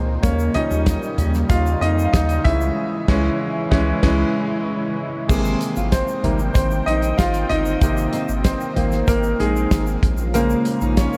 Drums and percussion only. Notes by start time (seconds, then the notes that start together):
0.23 kick, closed hi-hat, shaker
0.39 shaker
0.54 closed hi-hat, floor tom
0.71 shaker
0.86 kick, snare, closed hi-hat, shaker
1.03 shaker
1.18 closed hi-hat, floor tom, shaker
1.34 snare, shaker
1.50 kick, closed hi-hat, shaker
1.66 shaker
1.82 closed hi-hat
1.99 shaker
2.14 kick, snare, closed hi-hat, shaker
2.29 closed hi-hat, shaker
2.45 kick, closed hi-hat, floor tom
2.61 shaker
3.08 kick, snare, crash
3.72 kick, snare
4.03 kick, snare, crash
5.29 kick, crash, shaker
5.45 shaker
5.61 closed hi-hat, shaker
5.76 shaker
5.92 kick, snare, closed hi-hat, shaker
6.08 shaker
6.24 closed hi-hat, floor tom
6.39 shaker
6.55 kick, closed hi-hat, shaker
6.71 shaker
6.88 closed hi-hat
7.02 closed hi-hat, shaker
7.19 kick, snare, closed hi-hat, shaker
7.34 closed hi-hat, shaker
7.50 closed hi-hat, floor tom
7.66 shaker
7.81 kick, closed hi-hat, shaker
7.97 shaker
8.13 closed hi-hat, shaker
8.29 shaker
8.44 kick, snare, closed hi-hat, shaker
8.61 shaker
8.76 closed hi-hat, floor tom
8.92 snare, shaker
9.08 kick, closed hi-hat, shaker
9.23 shaker
9.40 closed hi-hat
9.56 shaker
9.71 kick, snare, closed hi-hat, shaker
9.87 shaker
10.03 kick, closed hi-hat, floor tom
10.18 shaker
10.34 closed hi-hat, shaker
10.50 shaker
10.65 closed hi-hat, shaker
10.81 shaker
10.97 kick, snare, closed hi-hat, shaker
11.13 shaker